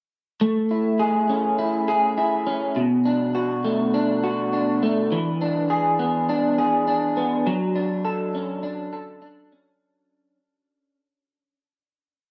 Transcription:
0, 0, Header, 1, 2, 480
1, 0, Start_track
1, 0, Key_signature, 3, "major"
1, 0, Tempo, 588178
1, 333, Time_signature, 4, 2, 24, 8
1, 10039, End_track
2, 0, Start_track
2, 0, Title_t, "Clean electric guitar"
2, 0, Program_c, 0, 27
2, 336, Note_on_c, 0, 57, 82
2, 578, Note_on_c, 0, 64, 52
2, 811, Note_on_c, 0, 68, 60
2, 1055, Note_on_c, 0, 61, 51
2, 1284, Note_off_c, 0, 64, 0
2, 1294, Note_on_c, 0, 64, 57
2, 1526, Note_off_c, 0, 68, 0
2, 1535, Note_on_c, 0, 68, 64
2, 1766, Note_off_c, 0, 64, 0
2, 1776, Note_on_c, 0, 64, 56
2, 2002, Note_off_c, 0, 61, 0
2, 2012, Note_on_c, 0, 61, 53
2, 2253, Note_on_c, 0, 47, 75
2, 2277, Note_off_c, 0, 57, 0
2, 2300, Note_off_c, 0, 61, 0
2, 2302, Note_off_c, 0, 64, 0
2, 2302, Note_off_c, 0, 68, 0
2, 2491, Note_on_c, 0, 62, 54
2, 2732, Note_on_c, 0, 66, 54
2, 2974, Note_on_c, 0, 57, 53
2, 3212, Note_off_c, 0, 62, 0
2, 3215, Note_on_c, 0, 62, 67
2, 3447, Note_off_c, 0, 66, 0
2, 3457, Note_on_c, 0, 66, 56
2, 3694, Note_off_c, 0, 62, 0
2, 3697, Note_on_c, 0, 62, 46
2, 3930, Note_off_c, 0, 57, 0
2, 3940, Note_on_c, 0, 57, 53
2, 4172, Note_off_c, 0, 47, 0
2, 4178, Note_on_c, 0, 52, 75
2, 4222, Note_off_c, 0, 66, 0
2, 4224, Note_off_c, 0, 57, 0
2, 4415, Note_off_c, 0, 62, 0
2, 4419, Note_on_c, 0, 62, 55
2, 4652, Note_on_c, 0, 68, 63
2, 4890, Note_on_c, 0, 59, 52
2, 5131, Note_off_c, 0, 62, 0
2, 5134, Note_on_c, 0, 62, 68
2, 5363, Note_off_c, 0, 68, 0
2, 5373, Note_on_c, 0, 68, 61
2, 5609, Note_off_c, 0, 62, 0
2, 5612, Note_on_c, 0, 62, 54
2, 5841, Note_off_c, 0, 59, 0
2, 5851, Note_on_c, 0, 59, 53
2, 6090, Note_off_c, 0, 52, 0
2, 6093, Note_on_c, 0, 54, 71
2, 6139, Note_off_c, 0, 59, 0
2, 6140, Note_off_c, 0, 68, 0
2, 6326, Note_off_c, 0, 62, 0
2, 6329, Note_on_c, 0, 62, 52
2, 6566, Note_on_c, 0, 69, 69
2, 6811, Note_on_c, 0, 61, 51
2, 7040, Note_off_c, 0, 62, 0
2, 7043, Note_on_c, 0, 62, 64
2, 7282, Note_off_c, 0, 69, 0
2, 7285, Note_on_c, 0, 69, 63
2, 7520, Note_off_c, 0, 62, 0
2, 7523, Note_on_c, 0, 62, 56
2, 7768, Note_off_c, 0, 61, 0
2, 7772, Note_on_c, 0, 61, 49
2, 8467, Note_off_c, 0, 54, 0
2, 8467, Note_off_c, 0, 61, 0
2, 8467, Note_off_c, 0, 62, 0
2, 8467, Note_off_c, 0, 69, 0
2, 10039, End_track
0, 0, End_of_file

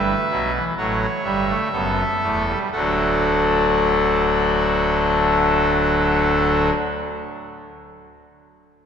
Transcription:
0, 0, Header, 1, 2, 480
1, 0, Start_track
1, 0, Key_signature, 2, "major"
1, 0, Tempo, 933126
1, 885, Tempo, 1020408
1, 1357, Time_signature, 4, 2, 24, 8
1, 4242, End_track
2, 0, Start_track
2, 0, Title_t, "Pipe organ"
2, 0, Program_c, 0, 19
2, 0, Note_on_c, 0, 31, 65
2, 0, Note_on_c, 0, 43, 68
2, 0, Note_on_c, 0, 55, 68
2, 0, Note_on_c, 0, 71, 66
2, 0, Note_on_c, 0, 76, 80
2, 72, Note_off_c, 0, 55, 0
2, 73, Note_off_c, 0, 31, 0
2, 73, Note_off_c, 0, 43, 0
2, 156, Note_on_c, 0, 54, 60
2, 157, Note_on_c, 0, 47, 65
2, 158, Note_on_c, 0, 35, 62
2, 258, Note_off_c, 0, 54, 0
2, 268, Note_off_c, 0, 76, 0
2, 278, Note_on_c, 0, 52, 64
2, 304, Note_off_c, 0, 47, 0
2, 305, Note_off_c, 0, 35, 0
2, 331, Note_off_c, 0, 71, 0
2, 380, Note_off_c, 0, 52, 0
2, 397, Note_on_c, 0, 45, 72
2, 397, Note_on_c, 0, 78, 71
2, 398, Note_on_c, 0, 54, 67
2, 398, Note_on_c, 0, 73, 68
2, 399, Note_on_c, 0, 33, 66
2, 546, Note_off_c, 0, 45, 0
2, 546, Note_off_c, 0, 78, 0
2, 547, Note_off_c, 0, 33, 0
2, 547, Note_off_c, 0, 54, 0
2, 635, Note_on_c, 0, 55, 68
2, 636, Note_on_c, 0, 76, 72
2, 637, Note_on_c, 0, 31, 70
2, 637, Note_on_c, 0, 43, 68
2, 742, Note_off_c, 0, 55, 0
2, 761, Note_on_c, 0, 57, 71
2, 791, Note_off_c, 0, 31, 0
2, 791, Note_off_c, 0, 43, 0
2, 818, Note_off_c, 0, 73, 0
2, 868, Note_off_c, 0, 57, 0
2, 886, Note_on_c, 0, 42, 65
2, 886, Note_on_c, 0, 59, 68
2, 887, Note_on_c, 0, 30, 69
2, 887, Note_on_c, 0, 69, 65
2, 1030, Note_off_c, 0, 59, 0
2, 1031, Note_off_c, 0, 30, 0
2, 1031, Note_off_c, 0, 42, 0
2, 1118, Note_on_c, 0, 28, 69
2, 1119, Note_on_c, 0, 40, 71
2, 1119, Note_on_c, 0, 57, 68
2, 1221, Note_off_c, 0, 57, 0
2, 1238, Note_on_c, 0, 55, 68
2, 1259, Note_off_c, 0, 76, 0
2, 1266, Note_off_c, 0, 28, 0
2, 1267, Note_off_c, 0, 40, 0
2, 1292, Note_off_c, 0, 69, 0
2, 1341, Note_off_c, 0, 55, 0
2, 1355, Note_on_c, 0, 57, 65
2, 1355, Note_on_c, 0, 69, 64
2, 1356, Note_on_c, 0, 38, 68
2, 1356, Note_on_c, 0, 78, 64
2, 1358, Note_on_c, 0, 26, 67
2, 1370, Note_on_c, 0, 54, 57
2, 1371, Note_on_c, 0, 62, 59
2, 3228, Note_off_c, 0, 38, 0
2, 3228, Note_off_c, 0, 57, 0
2, 3228, Note_off_c, 0, 69, 0
2, 3229, Note_off_c, 0, 78, 0
2, 3231, Note_off_c, 0, 26, 0
2, 3243, Note_off_c, 0, 54, 0
2, 3244, Note_off_c, 0, 62, 0
2, 4242, End_track
0, 0, End_of_file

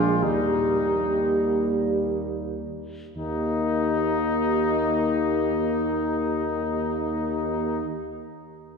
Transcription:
0, 0, Header, 1, 6, 480
1, 0, Start_track
1, 0, Key_signature, -3, "major"
1, 0, Tempo, 500000
1, 8424, End_track
2, 0, Start_track
2, 0, Title_t, "Euphonium"
2, 0, Program_c, 0, 58
2, 0, Note_on_c, 0, 65, 53
2, 212, Note_off_c, 0, 65, 0
2, 218, Note_on_c, 0, 67, 50
2, 2230, Note_off_c, 0, 67, 0
2, 3036, Note_on_c, 0, 63, 44
2, 7519, Note_off_c, 0, 63, 0
2, 8424, End_track
3, 0, Start_track
3, 0, Title_t, "Trumpet section"
3, 0, Program_c, 1, 61
3, 0, Note_on_c, 1, 65, 51
3, 224, Note_on_c, 1, 63, 47
3, 226, Note_off_c, 1, 65, 0
3, 1562, Note_off_c, 1, 63, 0
3, 3053, Note_on_c, 1, 63, 46
3, 7536, Note_off_c, 1, 63, 0
3, 8424, End_track
4, 0, Start_track
4, 0, Title_t, "French horn section"
4, 0, Program_c, 2, 60
4, 0, Note_on_c, 2, 62, 43
4, 186, Note_off_c, 2, 62, 0
4, 217, Note_on_c, 2, 58, 40
4, 2573, Note_off_c, 2, 58, 0
4, 3046, Note_on_c, 2, 67, 36
4, 7528, Note_off_c, 2, 67, 0
4, 8424, End_track
5, 0, Start_track
5, 0, Title_t, "Trombone"
5, 0, Program_c, 3, 57
5, 0, Note_on_c, 3, 56, 45
5, 227, Note_on_c, 3, 55, 36
5, 241, Note_off_c, 3, 56, 0
5, 2577, Note_off_c, 3, 55, 0
5, 3038, Note_on_c, 3, 58, 39
5, 7521, Note_off_c, 3, 58, 0
5, 8424, End_track
6, 0, Start_track
6, 0, Title_t, "Tuba"
6, 0, Program_c, 4, 58
6, 0, Note_on_c, 4, 34, 52
6, 230, Note_on_c, 4, 39, 42
6, 244, Note_off_c, 4, 34, 0
6, 2579, Note_off_c, 4, 39, 0
6, 3033, Note_on_c, 4, 39, 42
6, 7515, Note_off_c, 4, 39, 0
6, 8424, End_track
0, 0, End_of_file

